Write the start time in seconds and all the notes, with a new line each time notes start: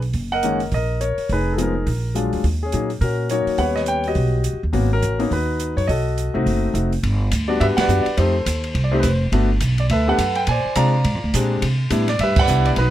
Already playing: B1
0.02 open hi-hat
0.13 F#1, kick, open hi-hat
0.32 A#4 D#5 F#5
0.43 D#3 G#3 A#3 C#4, closed hi-hat
0.60 open hi-hat
0.72 A#1 A#4 D#5, kick, open hi-hat
1.01 A#4 C#5, closed hi-hat
1.18 muted upright bass stroke, open hi-hat
1.29 F1 D#4 G#4 B4, kick, open hi-hat
1.53 A4
1.57 F3 G#3 B3 D#4, closed hi-hat
1.62 D#4 A#4
1.87 A#1, kick, open hi-hat
2.14 F#3 G#3 D4 F4, closed hi-hat
2.33 D2, open hi-hat
2.44 D#2, kick, open hi-hat
2.63 C#4 G#4
2.72 A#2 F#3 A#3 C#4 D#4, closed hi-hat
2.90 open hi-hat
3.01 A#2 C#4 F#4 A#4, kick, open hi-hat
3.29 F#3 A#3 C#4 D#4 F#4 A#4 C#5, closed hi-hat
3.47 muted upright bass stroke, open hi-hat
3.58 D#2 G3 B3 C#4 B4 C#5 F#5, kick, open hi-hat
3.76 D#5, snare
3.86 G5, closed hi-hat
4.04 F#4 G4, open hi-hat
4.08 D#5
4.15 B1, kick, open hi-hat
4.44 closed hi-hat
4.53 C#2
4.63 D#2
4.73 G#1 A#3 B3 C#4 F#4, kick, open hi-hat
4.93 C#4 F#4 A#4
5.02 A1, closed hi-hat
5.19 A#3 B3 C#4 D#4, open hi-hat
5.31 D#2 D#4 F#4 B4, kick, open hi-hat
5.60 closed hi-hat
5.77 F#2 C#5, open hi-hat
5.87 B1 F#4 A4 D#5, kick, open hi-hat
6.18 closed hi-hat
6.34 C2 A3 C4 D#4 F#4
6.46 F#1, kick, open hi-hat
6.74 F1 A3 C4 D#4 F#4, closed hi-hat
6.92 open hi-hat
7.03 G1, kick, ride
7.31 D2, kick, hi-hat pedal, ride
7.48 G3 B3 D4 F#4 D5
7.60 G2 G4 B4 E5, kick, ride
7.77 B4 D5 F#5, muted upright bass stroke, snare, ride
7.88 F#2 G3 B3 D4 F#4, hi-hat pedal
8.03 D5, muted upright bass stroke, ride
8.17 F2 A3 C4 D#4 G4 A4 C5, kick, ride
8.46 D#2, kick, hi-hat pedal, ride
8.64 ride
8.75 C2, kick, ride
8.84 D5
8.91 A3 C4 D#4 G4 C5
9.00 F1 B4, kick, hi-hat pedal, ride
9.07 C5
9.32 G1 A3 B3 D4 F#4, kick, ride
9.60 B1, kick, hi-hat pedal, ride
9.78 D5, ride
9.89 D2 A4 B4 E5, kick, ride
10.08 A3 B3 D4 G4 A4 B4 F#5
10.19 F#2, kick, hi-hat pedal, ride
10.35 G5, ride
10.47 A#2 C5 G#5, kick, ride
10.51 D5
10.65 muted upright bass stroke
10.75 C3 G#3 C4 D4 F4 D5 F5 A#5, kick, hi-hat pedal, ride
11.04 G#2, kick, ride
11.15 F2
11.24 D2
11.34 A#2 G#3 C4 D4 G4, kick, hi-hat pedal, ride
11.62 C3, kick, ride
11.90 A2 G3 B3 D4 E4, kick, hi-hat pedal, ride
12.08 D5, snare, ride
12.19 G2 E5, kick, ride
12.23 G4 B4
12.36 F#5, kick, crash
12.40 B4 D5
12.47 C2 G3 B3 D4 E4, hi-hat pedal
12.65 D5, ride
12.76 B1 D#4 F#4 B4, kick, ride